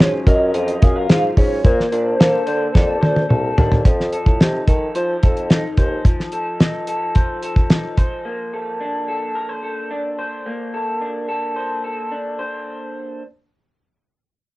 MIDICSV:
0, 0, Header, 1, 5, 480
1, 0, Start_track
1, 0, Key_signature, -2, "major"
1, 0, Tempo, 550964
1, 1431, Time_signature, 4, 2, 24, 8
1, 12686, End_track
2, 0, Start_track
2, 0, Title_t, "Soft synth lead"
2, 0, Program_c, 0, 80
2, 1, Note_on_c, 0, 73, 88
2, 107, Note_off_c, 0, 73, 0
2, 242, Note_on_c, 0, 75, 99
2, 460, Note_off_c, 0, 75, 0
2, 475, Note_on_c, 0, 75, 107
2, 722, Note_on_c, 0, 77, 127
2, 735, Note_off_c, 0, 75, 0
2, 1192, Note_off_c, 0, 77, 0
2, 1198, Note_on_c, 0, 73, 102
2, 1440, Note_on_c, 0, 72, 110
2, 1453, Note_off_c, 0, 73, 0
2, 2394, Note_off_c, 0, 72, 0
2, 2404, Note_on_c, 0, 74, 102
2, 3081, Note_off_c, 0, 74, 0
2, 12686, End_track
3, 0, Start_track
3, 0, Title_t, "Clean electric guitar"
3, 0, Program_c, 1, 27
3, 0, Note_on_c, 1, 54, 81
3, 0, Note_on_c, 1, 61, 70
3, 0, Note_on_c, 1, 65, 72
3, 0, Note_on_c, 1, 70, 63
3, 231, Note_off_c, 1, 70, 0
3, 235, Note_on_c, 1, 70, 70
3, 471, Note_off_c, 1, 65, 0
3, 475, Note_on_c, 1, 65, 64
3, 710, Note_off_c, 1, 70, 0
3, 714, Note_on_c, 1, 68, 58
3, 835, Note_off_c, 1, 68, 0
3, 835, Note_on_c, 1, 70, 54
3, 954, Note_off_c, 1, 65, 0
3, 958, Note_on_c, 1, 65, 60
3, 1186, Note_off_c, 1, 61, 0
3, 1196, Note_on_c, 1, 61, 63
3, 1428, Note_off_c, 1, 54, 0
3, 1437, Note_on_c, 1, 58, 81
3, 1480, Note_off_c, 1, 70, 0
3, 1481, Note_off_c, 1, 61, 0
3, 1675, Note_on_c, 1, 62, 71
3, 1911, Note_off_c, 1, 65, 0
3, 1915, Note_on_c, 1, 69, 67
3, 2149, Note_on_c, 1, 72, 72
3, 2385, Note_off_c, 1, 69, 0
3, 2389, Note_on_c, 1, 69, 60
3, 2622, Note_off_c, 1, 72, 0
3, 2625, Note_on_c, 1, 72, 59
3, 2864, Note_off_c, 1, 69, 0
3, 2868, Note_on_c, 1, 69, 65
3, 3103, Note_off_c, 1, 62, 0
3, 3113, Note_on_c, 1, 62, 59
3, 3351, Note_on_c, 1, 53, 69
3, 3352, Note_off_c, 1, 58, 0
3, 3399, Note_off_c, 1, 62, 0
3, 3590, Note_off_c, 1, 69, 0
3, 3594, Note_on_c, 1, 69, 63
3, 3834, Note_on_c, 1, 63, 62
3, 4066, Note_off_c, 1, 69, 0
3, 4070, Note_on_c, 1, 69, 57
3, 4310, Note_off_c, 1, 72, 0
3, 4314, Note_on_c, 1, 72, 62
3, 4553, Note_off_c, 1, 69, 0
3, 4556, Note_on_c, 1, 69, 48
3, 4781, Note_off_c, 1, 63, 0
3, 4791, Note_on_c, 1, 63, 61
3, 5031, Note_off_c, 1, 72, 0
3, 5035, Note_on_c, 1, 72, 63
3, 5272, Note_off_c, 1, 53, 0
3, 5276, Note_on_c, 1, 53, 75
3, 5509, Note_off_c, 1, 69, 0
3, 5513, Note_on_c, 1, 69, 65
3, 5749, Note_off_c, 1, 63, 0
3, 5759, Note_on_c, 1, 63, 56
3, 5985, Note_off_c, 1, 69, 0
3, 5989, Note_on_c, 1, 69, 56
3, 6229, Note_off_c, 1, 72, 0
3, 6232, Note_on_c, 1, 72, 60
3, 6470, Note_off_c, 1, 69, 0
3, 6474, Note_on_c, 1, 69, 45
3, 6703, Note_off_c, 1, 63, 0
3, 6713, Note_on_c, 1, 63, 51
3, 6950, Note_off_c, 1, 72, 0
3, 6954, Note_on_c, 1, 72, 66
3, 7191, Note_on_c, 1, 58, 71
3, 7240, Note_off_c, 1, 63, 0
3, 7431, Note_off_c, 1, 69, 0
3, 7435, Note_on_c, 1, 69, 57
3, 7671, Note_on_c, 1, 62, 58
3, 7697, Note_off_c, 1, 72, 0
3, 7908, Note_off_c, 1, 69, 0
3, 7911, Note_on_c, 1, 69, 52
3, 8148, Note_on_c, 1, 70, 56
3, 8267, Note_off_c, 1, 70, 0
3, 8267, Note_on_c, 1, 72, 49
3, 8325, Note_off_c, 1, 53, 0
3, 8384, Note_off_c, 1, 69, 0
3, 8388, Note_on_c, 1, 69, 47
3, 8627, Note_off_c, 1, 62, 0
3, 8630, Note_on_c, 1, 62, 57
3, 8862, Note_off_c, 1, 72, 0
3, 8872, Note_on_c, 1, 72, 53
3, 9110, Note_off_c, 1, 58, 0
3, 9113, Note_on_c, 1, 58, 72
3, 9350, Note_off_c, 1, 69, 0
3, 9353, Note_on_c, 1, 69, 56
3, 9589, Note_off_c, 1, 62, 0
3, 9592, Note_on_c, 1, 62, 56
3, 9829, Note_off_c, 1, 69, 0
3, 9832, Note_on_c, 1, 69, 58
3, 10069, Note_off_c, 1, 72, 0
3, 10072, Note_on_c, 1, 72, 49
3, 10311, Note_off_c, 1, 69, 0
3, 10314, Note_on_c, 1, 69, 40
3, 10551, Note_off_c, 1, 62, 0
3, 10555, Note_on_c, 1, 62, 47
3, 10790, Note_off_c, 1, 72, 0
3, 10793, Note_on_c, 1, 72, 53
3, 11516, Note_off_c, 1, 72, 0
3, 11517, Note_off_c, 1, 58, 0
3, 11517, Note_off_c, 1, 62, 0
3, 11517, Note_off_c, 1, 69, 0
3, 12686, End_track
4, 0, Start_track
4, 0, Title_t, "Bassoon"
4, 0, Program_c, 2, 70
4, 0, Note_on_c, 2, 44, 80
4, 158, Note_off_c, 2, 44, 0
4, 230, Note_on_c, 2, 42, 109
4, 422, Note_off_c, 2, 42, 0
4, 464, Note_on_c, 2, 41, 112
4, 659, Note_off_c, 2, 41, 0
4, 718, Note_on_c, 2, 42, 87
4, 907, Note_off_c, 2, 42, 0
4, 949, Note_on_c, 2, 44, 107
4, 1142, Note_off_c, 2, 44, 0
4, 1196, Note_on_c, 2, 44, 85
4, 1386, Note_off_c, 2, 44, 0
4, 1434, Note_on_c, 2, 46, 117
4, 1624, Note_off_c, 2, 46, 0
4, 1672, Note_on_c, 2, 46, 98
4, 1863, Note_off_c, 2, 46, 0
4, 1915, Note_on_c, 2, 58, 91
4, 2105, Note_off_c, 2, 58, 0
4, 2156, Note_on_c, 2, 50, 98
4, 2345, Note_off_c, 2, 50, 0
4, 2396, Note_on_c, 2, 41, 96
4, 2632, Note_on_c, 2, 38, 91
4, 2645, Note_off_c, 2, 41, 0
4, 2823, Note_off_c, 2, 38, 0
4, 2875, Note_on_c, 2, 36, 102
4, 3065, Note_off_c, 2, 36, 0
4, 3119, Note_on_c, 2, 39, 92
4, 3307, Note_off_c, 2, 39, 0
4, 3354, Note_on_c, 2, 41, 98
4, 3640, Note_off_c, 2, 41, 0
4, 3715, Note_on_c, 2, 45, 66
4, 3808, Note_off_c, 2, 45, 0
4, 3835, Note_on_c, 2, 48, 83
4, 4025, Note_off_c, 2, 48, 0
4, 4073, Note_on_c, 2, 51, 84
4, 4264, Note_off_c, 2, 51, 0
4, 4316, Note_on_c, 2, 53, 103
4, 4505, Note_off_c, 2, 53, 0
4, 4562, Note_on_c, 2, 41, 78
4, 4941, Note_off_c, 2, 41, 0
4, 5034, Note_on_c, 2, 39, 81
4, 5224, Note_off_c, 2, 39, 0
4, 12686, End_track
5, 0, Start_track
5, 0, Title_t, "Drums"
5, 0, Note_on_c, 9, 42, 76
5, 3, Note_on_c, 9, 38, 97
5, 88, Note_off_c, 9, 42, 0
5, 90, Note_off_c, 9, 38, 0
5, 231, Note_on_c, 9, 36, 89
5, 232, Note_on_c, 9, 42, 84
5, 319, Note_off_c, 9, 36, 0
5, 320, Note_off_c, 9, 42, 0
5, 471, Note_on_c, 9, 42, 85
5, 559, Note_off_c, 9, 42, 0
5, 591, Note_on_c, 9, 42, 63
5, 678, Note_off_c, 9, 42, 0
5, 715, Note_on_c, 9, 42, 85
5, 719, Note_on_c, 9, 36, 108
5, 802, Note_off_c, 9, 42, 0
5, 806, Note_off_c, 9, 36, 0
5, 954, Note_on_c, 9, 42, 87
5, 958, Note_on_c, 9, 38, 116
5, 1041, Note_off_c, 9, 42, 0
5, 1045, Note_off_c, 9, 38, 0
5, 1195, Note_on_c, 9, 36, 92
5, 1195, Note_on_c, 9, 46, 64
5, 1282, Note_off_c, 9, 36, 0
5, 1282, Note_off_c, 9, 46, 0
5, 1434, Note_on_c, 9, 36, 120
5, 1435, Note_on_c, 9, 42, 113
5, 1521, Note_off_c, 9, 36, 0
5, 1522, Note_off_c, 9, 42, 0
5, 1569, Note_on_c, 9, 38, 37
5, 1656, Note_off_c, 9, 38, 0
5, 1676, Note_on_c, 9, 42, 71
5, 1763, Note_off_c, 9, 42, 0
5, 1921, Note_on_c, 9, 42, 73
5, 1923, Note_on_c, 9, 38, 114
5, 2008, Note_off_c, 9, 42, 0
5, 2011, Note_off_c, 9, 38, 0
5, 2152, Note_on_c, 9, 42, 75
5, 2239, Note_off_c, 9, 42, 0
5, 2398, Note_on_c, 9, 36, 102
5, 2403, Note_on_c, 9, 38, 57
5, 2485, Note_off_c, 9, 36, 0
5, 2490, Note_off_c, 9, 38, 0
5, 2637, Note_on_c, 9, 48, 89
5, 2724, Note_off_c, 9, 48, 0
5, 2756, Note_on_c, 9, 48, 69
5, 2843, Note_off_c, 9, 48, 0
5, 2877, Note_on_c, 9, 47, 85
5, 2964, Note_off_c, 9, 47, 0
5, 3116, Note_on_c, 9, 43, 109
5, 3203, Note_off_c, 9, 43, 0
5, 3236, Note_on_c, 9, 43, 97
5, 3323, Note_off_c, 9, 43, 0
5, 3354, Note_on_c, 9, 36, 102
5, 3356, Note_on_c, 9, 42, 96
5, 3441, Note_off_c, 9, 36, 0
5, 3443, Note_off_c, 9, 42, 0
5, 3486, Note_on_c, 9, 38, 35
5, 3573, Note_off_c, 9, 38, 0
5, 3592, Note_on_c, 9, 42, 67
5, 3680, Note_off_c, 9, 42, 0
5, 3712, Note_on_c, 9, 36, 81
5, 3800, Note_off_c, 9, 36, 0
5, 3837, Note_on_c, 9, 42, 64
5, 3840, Note_on_c, 9, 38, 87
5, 3924, Note_off_c, 9, 42, 0
5, 3927, Note_off_c, 9, 38, 0
5, 4072, Note_on_c, 9, 42, 67
5, 4073, Note_on_c, 9, 36, 80
5, 4159, Note_off_c, 9, 42, 0
5, 4160, Note_off_c, 9, 36, 0
5, 4313, Note_on_c, 9, 42, 81
5, 4400, Note_off_c, 9, 42, 0
5, 4555, Note_on_c, 9, 42, 76
5, 4560, Note_on_c, 9, 36, 96
5, 4642, Note_off_c, 9, 42, 0
5, 4647, Note_off_c, 9, 36, 0
5, 4677, Note_on_c, 9, 42, 45
5, 4764, Note_off_c, 9, 42, 0
5, 4794, Note_on_c, 9, 42, 86
5, 4798, Note_on_c, 9, 38, 90
5, 4881, Note_off_c, 9, 42, 0
5, 4885, Note_off_c, 9, 38, 0
5, 5032, Note_on_c, 9, 42, 77
5, 5034, Note_on_c, 9, 36, 75
5, 5119, Note_off_c, 9, 42, 0
5, 5121, Note_off_c, 9, 36, 0
5, 5273, Note_on_c, 9, 36, 110
5, 5273, Note_on_c, 9, 42, 92
5, 5360, Note_off_c, 9, 36, 0
5, 5360, Note_off_c, 9, 42, 0
5, 5404, Note_on_c, 9, 38, 35
5, 5491, Note_off_c, 9, 38, 0
5, 5507, Note_on_c, 9, 42, 60
5, 5594, Note_off_c, 9, 42, 0
5, 5753, Note_on_c, 9, 42, 66
5, 5755, Note_on_c, 9, 38, 90
5, 5840, Note_off_c, 9, 42, 0
5, 5843, Note_off_c, 9, 38, 0
5, 5987, Note_on_c, 9, 42, 68
5, 6074, Note_off_c, 9, 42, 0
5, 6229, Note_on_c, 9, 42, 70
5, 6235, Note_on_c, 9, 36, 86
5, 6316, Note_off_c, 9, 42, 0
5, 6323, Note_off_c, 9, 36, 0
5, 6470, Note_on_c, 9, 42, 84
5, 6557, Note_off_c, 9, 42, 0
5, 6589, Note_on_c, 9, 36, 83
5, 6676, Note_off_c, 9, 36, 0
5, 6708, Note_on_c, 9, 42, 78
5, 6712, Note_on_c, 9, 38, 98
5, 6795, Note_off_c, 9, 42, 0
5, 6799, Note_off_c, 9, 38, 0
5, 6948, Note_on_c, 9, 42, 74
5, 6949, Note_on_c, 9, 36, 75
5, 7035, Note_off_c, 9, 42, 0
5, 7037, Note_off_c, 9, 36, 0
5, 12686, End_track
0, 0, End_of_file